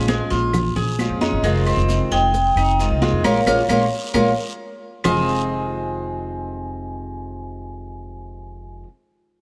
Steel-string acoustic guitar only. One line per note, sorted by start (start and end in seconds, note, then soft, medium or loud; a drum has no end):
0.00 0.53 F3 medium
0.00 0.54 G#3 medium
0.00 0.53 C#4 medium
0.00 0.54 F4 medium
0.54 muted steel-string acoustic guitar stroke medium
0.99 1.20 F3 soft
0.99 1.21 G#3 soft
0.99 1.21 C#4 medium
0.99 1.20 F4 medium
1.21 1.44 G#3 medium
1.21 1.43 C#4 medium
1.21 1.43 F4 medium
1.44 2.33 C3 medium
1.44 2.33 D#3 medium
1.44 2.34 G#3 medium
1.44 2.33 C4 medium
1.44 2.34 F4 medium
2.34 muted steel-string acoustic guitar stroke medium
2.79 3.01 D#3 soft
2.79 3.01 G#3 soft
2.79 3.01 C4 medium
2.79 3.01 F4 medium
3.02 3.24 D#3 medium
3.02 3.23 G#3 medium
3.02 3.24 C4 medium
3.02 3.23 F4 medium
3.24 3.39 G#3 loud
3.24 3.38 A#3 medium
3.24 3.39 C#4 medium
3.47 3.61 G#3 medium
3.47 3.61 A#3 loud
3.47 3.61 C#4 loud
3.69 3.84 G#3 medium
3.69 3.84 A#3 medium
3.69 3.84 C#4 medium
4.14 4.29 G#3 loud
4.14 4.29 A#3 loud
4.14 4.29 C#4 medium
5.04 8.87 F2 medium
5.04 8.87 C3 medium
5.04 8.88 D#3 medium
5.04 8.88 G#3 medium
5.04 8.88 C4 medium
5.04 8.89 F4 medium